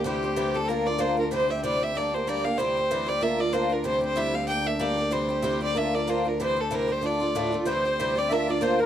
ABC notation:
X:1
M:4/4
L:1/8
Q:"Swing" 1/4=189
K:Cmix
V:1 name="Accordion"
z8 | z8 | z8 | z8 |
z8 | z8 | c3 d e d c B |]
V:2 name="Fiddle"
G3 A B d c B | c e d e d c d f | c3 d e d c B | c c e f g e d2 |
c3 d e d c B | c A B c d3 z | c3 d e d c B |]
V:3 name="Twelve-string acoustic guitar"
[C,E,G,CG] [G,CG] [C,E,G,CG] [G,CG] [B,DFB] [DFB] [B,DFB] [DFB] | [C,E,G,CG] [G,CG] [C,E,G,CG] [G,CG] [G,B,DG] [B,DG] [G,B,DG] [B,DG] | [C,E,G,CG] [G,CG] [C,E,G,CG] [G,CG] [B,DFB] [DFB] [B,DFB] [DFB] | [C,E,G,CG] [G,CG] [C,E,G,CG] [G,CG] [G,B,DG] [B,DG] [G,B,DG] [B,DG] |
[C,E,G,CG] [G,CG] [C,E,G,CG] [G,CG] [B,DFB] [DFB] [B,DFB] [DFB] | [C,E,G,CG] [G,CG] [C,E,G,CG] [G,CG] [D,A,DF] [D,A,DF] [D,,A,,D,A,DF] [D,A,DF] | [C,E,G,CG] [G,CG] [C,E,G,CG] [G,CG] [B,DFB] [DFB] [B,DFB] [DFB] |]
V:4 name="Cello" clef=bass
D,,8- | D,,8 | D,,8- | D,,8- |
D,,8- | D,,8 | D,,8 |]